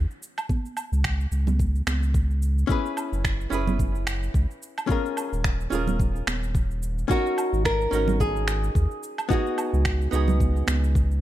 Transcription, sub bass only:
0.92 1.27 C#2 loud
1.32 1.82 C#2 medium
1.87 2.64 C#2 medium
3.12 3.47 F#1 loud
3.52 4.29 F#1 medium
4.34 4.46 C#2 loud
5.33 5.67 D#1 loud
5.72 6.22 D#1 medium
6.27 7.05 D#1 medium
7.53 7.87 G#1 loud
7.92 8.70 G#1 medium
8.75 8.87 D#2 loud
9.73 10.08 C#2 loud
10.13 10.63 C#2 medium
10.68 11.21 C#2 medium

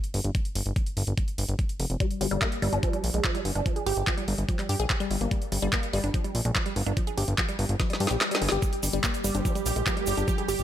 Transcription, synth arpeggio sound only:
2.00 2.06 G3 medium
2.21 2.29 G3 medium
2.31 2.37 G3 loud
2.42 2.47 A#3 medium
2.62 2.68 G3 loud
2.73 2.78 D4 medium
2.83 2.89 F3 medium
2.93 2.99 G3 medium
3.14 3.22 G#3 medium
3.24 3.30 F3 medium
3.35 3.40 G3 medium
3.55 3.61 D4 medium
3.66 3.71 F3 medium
3.76 3.82 G#4 medium
3.86 3.95 G4 loud
4.07 4.13 F3 medium
4.18 4.23 G3 medium
4.28 4.33 G3 medium
4.49 4.54 F3 medium
4.59 4.64 G3 medium
4.69 4.78 G4 medium
4.80 4.88 G#4 loud
5.00 5.09 G3 loud
5.11 5.16 G3 medium
5.21 5.29 A#3 medium
5.31 5.37 G3 medium
5.52 5.60 G3 medium
5.62 5.68 G3 loud
5.73 5.78 A#3 medium
5.93 5.99 G3 loud
6.04 6.09 D4 medium
6.14 6.20 F3 medium
6.24 6.30 G3 medium
6.45 6.54 G#3 medium
6.55 6.61 F3 medium
6.66 6.71 G3 medium
6.87 6.92 D4 medium
6.97 7.02 F3 medium
7.07 7.13 G#4 medium
7.18 7.26 G4 loud
7.38 7.44 F3 medium
7.49 7.54 G3 medium
7.59 7.65 G3 medium
7.80 7.85 F3 medium
7.90 7.96 G3 medium
8.00 8.06 G4 medium
8.11 8.14 G4 medium
8.31 8.40 G3 medium
8.42 8.47 G#4 medium
8.52 8.58 G4 loud
8.62 8.68 G3 medium
8.83 8.91 G3 medium
8.93 8.99 G3 loud
9.04 9.09 A#3 medium
9.24 9.30 G3 loud
9.35 9.40 D4 medium
9.45 9.51 F3 medium
9.55 9.61 G3 medium
9.76 9.85 G#3 medium
9.86 9.92 F3 medium
9.97 10.02 G3 medium
10.18 10.23 D4 medium
10.28 10.33 F3 medium
10.38 10.44 G#4 medium
10.49 10.57 G4 loud

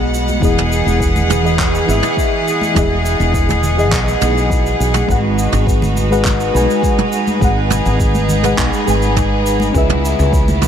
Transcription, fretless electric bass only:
0.00 0.37 B1 medium
0.42 0.81 E1 medium
0.86 1.83 E1 loud
1.88 2.00 G#1 medium
2.76 3.14 E1 medium
3.20 3.92 E1 loud
3.92 4.14 B1 medium
4.22 4.74 B1 medium
4.80 5.02 B1 medium
5.08 5.47 G#1 loud
5.53 6.49 G#1 loud
6.54 6.66 B1 medium
7.41 7.80 G#1 loud
7.86 8.53 G#1 loud
8.58 8.69 B1 medium
8.87 9.69 G#1 medium
9.74 10.13 C#2 loud
10.19 10.68 C#2 loud

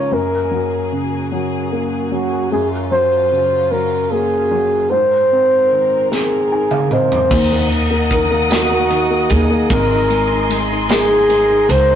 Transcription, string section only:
0.00 2.48 A#3 soft
0.14 4.89 F#2 medium
0.14 4.89 F#3 medium
0.14 2.50 G#4 medium
2.54 4.90 C#4 medium
2.54 4.90 F4 medium
4.92 7.29 G#2 medium
4.92 7.29 G#3 medium
4.92 7.29 C4 medium
4.92 7.29 A#4 medium
7.32 9.69 A#4 medium
7.32 11.95 D#5 medium
7.32 9.69 F#5 medium
7.32 9.69 D#6 medium
9.71 11.95 A#4 medium
9.71 11.95 G#5 medium
9.71 11.95 C6 medium

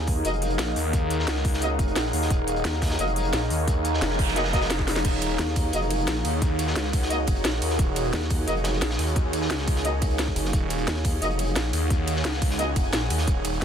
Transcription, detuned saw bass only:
0.59 0.75 A#1 loud
0.76 1.26 D#2 loud
1.28 1.78 C#2 loud
1.79 1.95 F1 loud
1.96 2.12 A#1 medium
2.13 2.29 D#2 loud
2.30 2.63 D#1 loud
3.33 3.49 A#1 medium
3.50 4.01 D#2 loud
5.05 5.38 D#1 medium
6.08 6.23 A#1 loud
6.25 6.75 D#2 loud
6.76 7.26 C#2 loud
7.28 7.43 F1 loud
7.45 7.60 A#1 loud
7.62 7.78 D#2 loud
7.79 8.12 D#1 loud
8.82 8.98 A#1 loud
8.99 9.49 D#2 loud
9.50 10.35 C#2 loud
10.53 10.86 D#1 loud
11.56 11.72 A#1 loud
11.73 12.23 D#2 loud
12.25 12.75 C#2 loud
12.76 12.92 F1 loud
12.93 13.09 A#1 loud
13.10 13.26 D#2 loud
13.28 13.60 D#1 medium

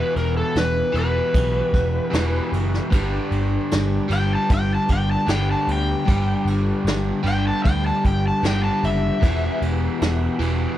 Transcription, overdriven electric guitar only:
0.00 0.92 E2 medium
0.00 0.92 B2 medium
0.00 0.91 E3 loud
0.92 2.10 E2 medium
0.92 2.11 B2 medium
0.92 2.10 E3 medium
2.11 2.89 E2 medium
2.11 2.90 B2 medium
2.11 2.91 E3 medium
2.90 4.11 G2 medium
2.90 4.08 D3 medium
2.90 4.08 G3 loud
4.09 5.25 G2 medium
4.09 5.27 D3 medium
4.09 5.29 G3 medium
5.26 6.04 G2 medium
5.26 6.05 D3 medium
5.26 6.08 G3 medium
6.05 7.23 G2 medium
6.05 7.24 D3 medium
6.05 7.23 G3 loud
7.23 8.42 G2 medium
7.23 8.42 D3 medium
7.23 8.46 G3 medium
8.43 9.20 G2 medium
8.43 9.21 D3 medium
8.43 9.23 G3 medium
9.20 10.42 E2 medium
9.20 10.38 B2 loud
9.20 10.39 E3 loud
10.39 10.78 E2 medium
10.39 10.78 B2 medium
10.39 10.78 E3 medium

